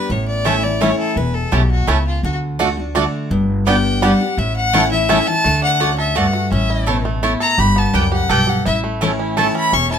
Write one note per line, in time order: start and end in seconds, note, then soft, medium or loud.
0.00 0.13 B4 loud
0.10 0.91 A1 medium
0.10 0.78 A2 loud
0.10 0.27 C#5 medium
0.28 0.47 D5 medium
0.45 0.63 E3 medium
0.45 0.54 A3 medium
0.45 0.53 A3 medium
0.45 0.63 A3 loud
0.45 0.53 C#4 medium
0.45 0.63 C#4 loud
0.45 0.54 E4 medium
0.45 0.63 E4 medium
0.45 0.55 C#5 loud
0.45 0.65 E5 loud
0.45 0.55 A5 loud
0.63 0.82 C#4 soft
0.63 0.81 E4 medium
0.63 0.82 D5 medium
0.81 1.15 E3 medium
0.81 0.90 A3 medium
0.81 0.89 A3 medium
0.81 1.15 A3 medium
0.81 0.89 C#4 medium
0.81 1.16 C#4 medium
0.81 0.90 E4 loud
0.81 0.89 E4 medium
0.81 1.16 E4 medium
0.81 0.98 C#5 medium
0.81 0.90 C#5 medium
0.81 0.90 A5 loud
0.99 1.18 A4 medium
1.16 1.43 E1 medium
1.16 1.85 E2 medium
1.16 1.36 B4 medium
1.34 1.54 A4 medium
1.52 1.83 B1 medium
1.52 1.86 B2 medium
1.52 1.61 A3 medium
1.52 1.60 A3 medium
1.52 1.60 C#4 medium
1.52 1.61 E4 medium
1.52 1.70 G4 medium
1.52 1.61 C#5 medium
1.52 1.62 A5 loud
1.71 1.90 F#4 medium
1.87 2.18 C#2 medium
1.87 2.22 C#3 medium
1.87 1.97 A3 loud
1.87 1.96 A3 medium
1.87 1.96 C#4 medium
1.87 1.97 E4 medium
1.87 1.96 E4 medium
1.87 2.06 E4 medium
1.87 1.97 C#5 loud
1.87 1.97 A5 loud
2.07 2.23 F4 medium
2.23 3.05 D2 loud
2.23 2.58 D3 loud
2.23 2.35 F#4 medium
2.59 2.77 D3 medium
2.59 2.68 A3 loud
2.59 2.67 A3 medium
2.59 2.77 A3 loud
2.59 2.67 D4 medium
2.59 2.77 D4 medium
2.59 2.69 F#4 loud
2.59 2.68 F#4 medium
2.59 2.76 F#4 loud
2.59 2.69 D5 medium
2.59 2.69 A5 loud
2.77 2.95 D4 soft
2.77 2.94 F#4 medium
2.95 3.29 D3 medium
2.95 3.03 A3 medium
2.95 3.04 A3 medium
2.95 3.29 A3 medium
2.95 3.03 D4 medium
2.95 3.30 D4 loud
2.95 3.03 F#4 medium
2.95 3.04 F#4 medium
2.95 3.30 F#4 medium
2.95 3.05 D5 loud
2.95 3.05 A5 loud
3.31 4.12 G1 medium
3.31 3.99 G2 loud
3.66 4.00 G3 medium
3.66 3.76 B3 loud
3.66 3.75 B3 medium
3.66 4.01 B3 medium
3.66 3.75 D4 medium
3.66 4.01 D4 loud
3.66 3.76 G4 loud
3.66 3.75 G4 medium
3.66 4.01 G4 loud
3.66 3.76 D5 loud
3.66 4.03 G5 medium
3.66 3.76 G5 loud
4.01 4.20 G3 medium
4.01 4.11 B3 medium
4.01 4.10 B3 medium
4.01 4.20 B3 medium
4.01 4.10 D4 medium
4.01 4.20 D4 medium
4.01 4.11 G4 medium
4.01 4.10 G4 medium
4.01 4.20 G4 medium
4.01 4.12 D5 loud
4.01 4.40 F#5 medium
4.01 4.12 G5 loud
4.21 4.38 D4 soft
4.21 4.37 G4 medium
4.37 5.19 A1 loud
4.37 5.06 A2 loud
4.37 4.55 E5 medium
4.56 4.89 F#5 loud
4.73 4.91 E3 medium
4.73 4.82 A3 loud
4.73 4.91 A3 medium
4.73 4.82 A3 medium
4.73 4.91 C#4 medium
4.73 4.82 C#4 medium
4.73 4.83 E4 loud
4.73 4.82 E4 medium
4.73 4.90 E4 medium
4.73 4.83 C#5 loud
4.73 4.83 A5 loud
4.91 5.09 C#4 soft
4.91 5.08 E4 medium
4.91 5.29 E5 loud
5.09 5.27 E3 medium
5.09 5.18 A3 loud
5.09 5.17 A3 medium
5.09 5.27 A3 medium
5.09 5.17 C#4 medium
5.09 5.27 C#4 loud
5.09 5.18 E4 loud
5.09 5.17 E4 medium
5.09 5.26 E4 loud
5.09 5.18 C#5 loud
5.09 5.19 A5 loud
5.27 5.45 C#4 medium
5.27 5.44 E4 medium
5.27 5.63 A5 loud
5.44 6.27 D2 medium
5.44 6.13 D3 medium
5.44 5.95 A3 medium
5.62 6.12 D4 medium
5.62 5.96 F#5 loud
5.80 5.89 A3 loud
5.80 6.15 C#4 medium
5.80 6.30 F#4 medium
5.80 5.89 F#4 medium
5.80 5.90 D5 medium
5.80 5.90 A5 medium
5.98 6.48 A4 medium
5.98 6.18 E5 medium
6.15 6.51 G2 medium
6.15 6.25 A3 loud
6.15 6.52 A3 medium
6.15 6.25 F#4 loud
6.15 6.25 D5 loud
6.15 6.51 F#5 loud
6.15 6.25 A5 loud
6.33 6.51 F#4 medium
6.52 7.33 A1 medium
6.52 7.20 A2 loud
6.52 7.02 C#4 medium
6.52 7.02 E5 loud
6.70 7.20 E4 medium
6.86 7.22 B2 medium
6.86 6.96 A3 loud
6.86 6.96 E4 medium
6.86 7.37 A4 medium
6.86 6.96 C#5 medium
6.86 6.97 A5 loud
7.05 7.55 A3 medium
7.23 7.57 A2 medium
7.23 7.32 A3 medium
7.23 7.58 E4 medium
7.23 7.32 E4 medium
7.23 7.32 C#5 loud
7.23 7.33 A5 loud
7.40 7.58 A4 medium
7.40 7.60 A#5 loud
7.58 7.85 G1 medium
7.58 7.95 G2 loud
7.58 8.09 G4 medium
7.58 7.80 B5 loud
7.76 8.26 B3 medium
7.76 7.96 A5 loud
7.94 8.24 C#2 medium
7.94 8.29 F#2 medium
7.94 8.03 B3 medium
7.94 8.44 D4 medium
7.94 8.04 G4 loud
7.94 8.04 D5 loud
7.94 8.04 G5 loud
7.94 8.12 G5 loud
8.12 8.46 G4 medium
8.12 8.32 F#5 loud
8.29 8.60 B1 medium
8.29 8.64 G2 medium
8.29 8.39 B3 loud
8.29 8.39 G4 medium
8.29 8.66 A4 medium
8.29 8.40 D5 loud
8.29 8.50 G5 loud
8.29 8.40 G5 loud
8.47 8.65 G4 medium
8.47 8.65 F#5 loud
8.65 9.48 A1 medium
8.65 9.34 A2 loud
8.65 9.16 E4 medium
8.65 8.77 E5 medium
8.84 9.99 A3 medium
9.01 9.36 E3 medium
9.01 9.10 A3 loud
9.01 9.36 A3 medium
9.01 9.51 C#4 medium
9.01 9.36 C#4 medium
9.01 9.11 E4 loud
9.01 9.36 E4 loud
9.01 9.11 C#5 medium
9.01 9.11 A5 loud
9.19 9.69 E4 medium
9.37 9.71 E3 medium
9.37 9.46 A3 medium
9.37 9.72 A3 medium
9.37 9.72 C#4 medium
9.37 9.46 E4 loud
9.37 9.72 E4 loud
9.37 9.99 A4 medium
9.37 9.47 C#5 medium
9.37 9.54 A5 medium
9.37 9.47 A5 loud
9.55 9.72 C#4 medium
9.55 9.75 B5 loud
9.73 9.99 E1 medium
9.73 9.99 E2 loud
9.73 9.99 C#4 medium
9.73 9.90 C#6 loud
9.91 9.99 E4 medium
9.91 9.99 A5 loud